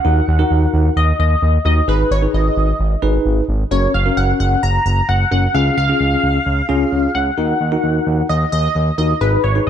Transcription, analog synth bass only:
0.05 D#2
0.28 D#2
0.51 D#2
0.73 D#2
0.96 D#2
1.19 D#2
1.42 D#2
1.65 D#2
1.88 G#1
2.11 G#1
2.34 G#1
2.57 G#1
2.79 G#1
3.02 G#1
3.25 G#1
3.48 G#1
3.71 F#1
3.94 F#1
4.17 F#1
4.40 F#1
4.63 F#1
4.86 F#1
5.09 F#1
5.32 F#1
5.54 C#2
5.77 C#2
6.00 C#2
6.23 C#2
6.46 C#2
6.69 C#2
6.92 C#2
7.15 C#2
7.38 D#2
7.61 D#2
7.83 D#2
8.06 D#2
8.29 D#2
8.52 D#2
8.75 D#2
8.98 D#2
9.21 G#1
9.44 G#1

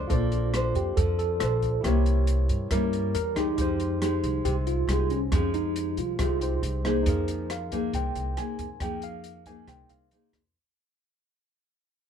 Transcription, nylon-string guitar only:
Already playing: D4 A4 C5
0.09 A#3
0.53 D4 A4 C5
0.97 F3
1.40 D4 A4 C5
1.84 C3 A#3 C#4 E4
2.70 G3 A#3 C#4 E4
3.35 G#3 D#4 G4
3.57 F3
4.01 G#3 D#4 G4
4.46 C3
4.89 G#3 D#4 G4
5.32 F3 G#3 D#4 G4
6.19 C3 G#3 D#4 G4
6.84 A#3 D#4 G#4
7.06 F3
7.72 A#3 D#4 G#4
7.94 C3
8.37 A#3 D#4 G#4
8.81 F3 A#3 D#4 G#4
9.47 A#3 D#4 G#4
9.68 C3
10.12 A#3 D#4 G#4

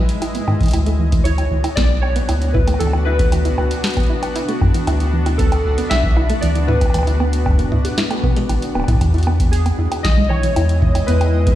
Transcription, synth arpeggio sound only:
0.22 E4
0.35 B3
0.48 D#3
0.61 E3
0.74 E4
0.86 A3
0.99 E3
1.12 E3
1.25 E4
1.51 E3
1.64 E4
1.77 B3
2.16 B3
2.29 E4
2.55 E4
2.68 A3
2.80 E3
2.93 E3
3.06 E4
3.32 E3
3.45 E4
3.58 B3
3.97 B3
4.10 E4
4.36 E4
4.49 A3
4.61 E3
4.74 E3
4.87 E4
5.13 E3
5.26 E4
5.39 B3
5.78 B3
5.91 E4
6.17 E4
6.30 A3
6.43 E3
6.55 E3
6.68 E4
6.94 E3
7.07 E4
7.20 B3
7.59 B3
7.72 E4
7.98 E4
8.11 A3
8.24 B3
8.37 G#3
8.49 E3
8.75 B3
8.88 E4
9.01 E3
9.14 E4
9.27 B3
9.66 B3
9.79 E4
10.05 E3
10.18 G#3
10.30 E3
10.43 E3
10.56 E4
10.82 E3
10.95 E4
11.08 B3
11.47 B3

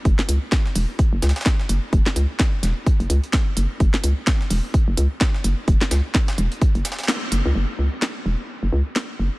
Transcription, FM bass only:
0.05 F#1
0.29 C#2
0.76 E1
1.13 F#1
1.22 C#2
1.69 F#1
1.93 F#1
2.16 C#2
2.63 E1
3.00 F#1
3.10 C#2
3.57 F#1
3.80 F#1
4.04 C#2
4.51 E1
4.88 F#1
4.97 C#2
5.44 F#1
5.68 F#1
5.91 C#2
6.38 E1
6.75 F#1
7.32 F#1
7.46 C#2
7.55 F#1
7.79 C#2
8.26 E1
8.63 F#1
8.72 C#2
9.19 F#1

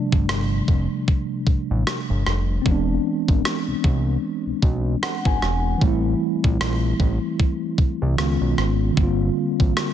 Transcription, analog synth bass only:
0.12 G1
0.29 G1
0.68 F1
1.47 A1
1.71 A1
2.10 G1
2.26 F1
2.66 E1
3.28 G#1
3.68 C2
3.84 C2
4.47 B1
4.63 B1
5.25 G#1
5.42 E1
5.82 A1
6.44 A#1
6.61 A#1
7.00 A1
7.78 C2
8.02 C2
8.18 C#2
8.41 B1
8.58 G#1
8.97 G1
9.60 A1

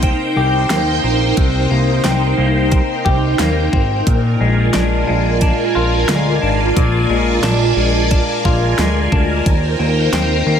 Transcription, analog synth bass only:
Already playing: C2
0.36 C2
0.71 D#2
1.04 A#1
1.37 C2
1.71 C2
2.05 C2
2.38 C2
3.05 C2
3.39 D#2
3.73 G#1
4.07 A#1
4.41 A#1
4.75 A#1
5.09 A#1
5.76 A#1
6.10 D2
6.43 G#1
6.77 A#1
7.10 A#1
7.43 A#1
7.76 A#1
8.45 A#1
8.78 D2
9.12 D2
9.46 D#2
9.80 D#2
10.13 D#2
10.46 D#2

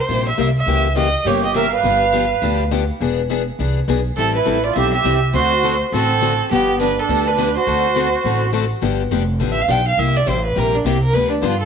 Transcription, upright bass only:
0.09 A#1
0.38 C2
0.67 C#2
1.25 G1
1.83 G1
2.42 D2
3.00 E1
3.59 C2
3.88 B1
4.17 A1
4.46 A1
4.76 B1
5.04 C2
5.34 D2
5.92 A1
6.51 G1
7.08 D2
7.67 D2
8.24 A1
8.82 G1
9.11 F1
9.40 A1
9.68 B1
9.97 C2
10.27 A1
10.56 A#1
10.85 C2
11.13 D2
11.43 G2

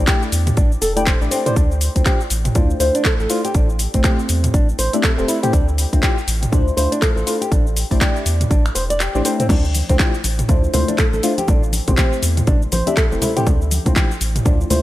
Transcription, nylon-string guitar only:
0.07 G4
0.57 D4
0.82 A4
0.96 D5
1.06 C5
1.21 G4
1.31 C4
1.46 C5
1.56 D4
1.96 C4
2.06 G4
2.55 D4
2.80 C5
2.95 D4
3.05 A4
3.20 A4
3.30 F4
3.45 G4
3.54 D4
3.94 C4
4.04 G4
4.54 D4
4.79 C5
4.94 D4
5.03 A4
5.18 A4
5.28 E4
5.43 G4
5.53 D4
5.93 C4
6.03 G4
6.52 D4
6.77 C5
6.92 D4
7.02 A4
7.16 A4
7.27 F4
7.41 G4
7.52 D4
7.91 C4
8.01 G4
8.50 D4
8.75 C5
8.90 D5
9.00 G4
9.15 C4
9.25 C4
9.40 C4
9.50 D4
9.89 C4
9.99 G4
10.49 D4
10.74 C5
10.89 D4
10.98 A4
11.14 A4
11.23 F4
11.38 G4
11.48 D4
11.88 C4
11.98 G4
12.47 D4
12.72 C5
12.87 D4
12.97 A4
13.12 A4
13.22 E4
13.36 G4
13.47 D4
13.86 C4
13.96 G4
14.45 D4
14.70 C5

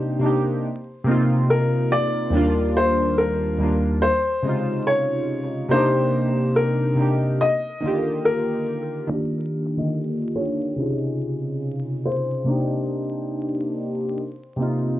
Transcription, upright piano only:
Already playing: C5
1.50 A#4
1.92 D5
2.77 C5
3.18 A#4
4.02 C5
4.87 C#5
5.71 C5
6.56 A#4
7.41 D#5
8.25 A#4
9.09 D5
9.78 D#5
10.36 C#5
12.06 C5

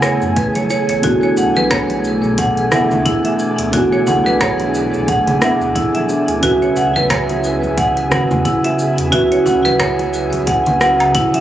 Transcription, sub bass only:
0.02 E1
0.22 F#2
0.89 A1
1.04 B1
1.37 B1
1.56 B1
2.24 B1
2.72 F#1
2.92 D2
3.59 D2
3.73 B1
4.07 B1
4.26 B1
4.93 B1
5.42 F#1
5.61 D2
6.28 D2
6.43 C#2
6.76 C#2
6.96 C#2
7.63 C#2
8.11 G#1
8.30 E2
8.98 E2
9.12 C#2
9.46 C#2
9.65 C#2
10.33 C#2
11.34 G#1

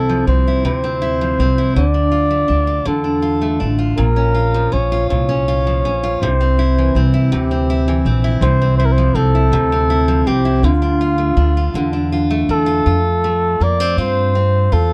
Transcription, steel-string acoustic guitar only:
Already playing: C3 C4 E4
0.09 F3
0.27 C4
0.48 E4
0.65 C3
0.84 C4
1.02 E4
1.21 F3
1.40 C4
1.58 E4
1.76 D3
1.94 D4
2.12 F4
2.31 A3
2.48 D4
2.67 F4
2.85 D3
3.04 D4
3.22 F4
3.41 A3
3.60 D4
3.79 F4
3.98 A#2
4.16 C#4
4.34 F4
4.54 F3
4.72 C#4
4.92 F4
5.10 A#2
5.29 C#4
5.48 F4
5.67 F3
5.85 C#4
6.03 F4
6.23 C3
6.41 C4
6.59 E4
6.78 E3
6.96 C4
7.14 E4
7.32 C3
7.51 C4
7.70 E4
7.88 E3
8.06 C4
8.24 E4
8.42 C3
8.62 C4
8.80 E4
8.98 F3
9.15 C4
9.35 E4
9.53 C3
9.72 C4
9.90 E4
10.08 F3
10.27 C4
10.45 E4
10.64 D3
10.82 D4
11.01 F4
11.18 A3
11.37 D4
11.57 F4
11.75 D3
11.93 D4
12.12 F4
12.30 A3
12.49 D4
12.66 F4
12.86 F4
13.24 A3
13.61 A#3
13.80 C4
13.98 F4
14.35 C4
14.72 F4

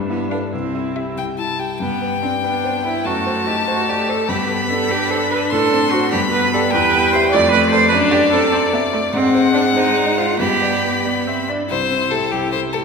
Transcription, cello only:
0.08 B3
0.30 D4
0.51 C4
1.80 B3
2.22 C4
2.44 D4
2.85 E4
3.06 F#4
3.48 G4
3.69 F#4
3.89 G4
4.10 A4
4.28 G4
4.69 A4
4.91 G4
5.10 A4
5.31 B4
5.51 A4
5.92 F#4
6.12 G4
6.32 B4
6.53 A4
6.72 B4
7.13 C5
7.32 D5
7.51 B4
7.70 C5
7.89 B4
8.11 G4
8.31 A4
9.13 C4
9.53 D4
9.75 D#4
10.18 F4
10.40 G4
11.71 C3
12.13 A2
12.34 G2
12.56 C3
12.75 A2

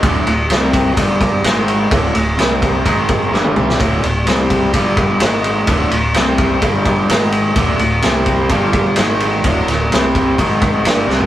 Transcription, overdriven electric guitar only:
0.03 D2 A2 D3
0.27 D2 A2
0.51 C3 G3 C4
0.97 G2 D3 G3
1.44 G#2 D#3 G#3
1.91 D2 A2 D3
2.14 D2 A2
2.38 C3 G3 C4
2.84 G#2 D#3 G#3
3.31 G2 D3 G3
3.54 C3 G3 C4
3.78 D2 A2 D3
4.02 D2 A2
4.25 C3 G3 C4
4.72 G2 D3 G3
5.20 G#2 D#3 G#3
5.66 D2 A2 D3
5.91 D2 A2
6.13 C3 G3 C4
6.61 G2 D3 G3
7.09 G#2 D#3 G#3
7.55 D2 A2 D3
7.80 D2 A2
8.02 C3 G3 C4
8.50 G2 D3 G3
8.96 G#2 D#3 G#3
9.44 D2 A2 D3
9.69 D2 A2
9.91 C3 G3 C4
10.38 G#2 D#3 G#3
10.85 G2 D3 G3
11.07 C3 G3 C4

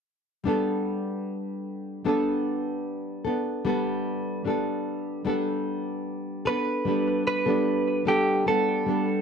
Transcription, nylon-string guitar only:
0.44 G3 B3 D4
0.48 A4
2.04 G3 B3 D4 A4
3.25 B3 D4 A4
3.65 G3 B3 D4 A4
4.45 G3 B3 D4 A4
5.25 G3 B3 D4 A4
6.45 B3 D4 A4
6.85 G3 B3 D4 A4
7.46 G3 B3 D4 A4
8.05 G3 B3 D4 A4
8.46 G3 B3 D4 A4
8.86 G3 B3 D4 A4

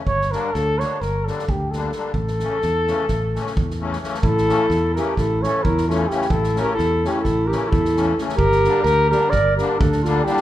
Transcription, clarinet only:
4.23 E4
4.97 G4
5.18 E4
5.44 A4
5.64 E4
5.88 F4
6.08 E4
6.30 E4
6.61 G4
6.75 E4
7.07 E4
7.22 E4
7.48 G4
7.68 E4
8.37 G4
8.83 G4
9.11 G4
9.31 A#4
9.56 G4
9.79 D4
10.03 F4
10.25 E4

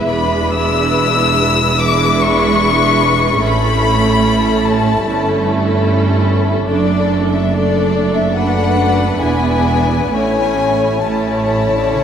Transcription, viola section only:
0.11 G#3 D4
1.80 G#3 D4
3.41 A3 C#4
5.05 A3 C#4
6.68 A3 D4
7.51 A3 D4
8.35 A3 D4
9.22 B3 D4
10.12 A3 C#4
11.03 A3 C#4

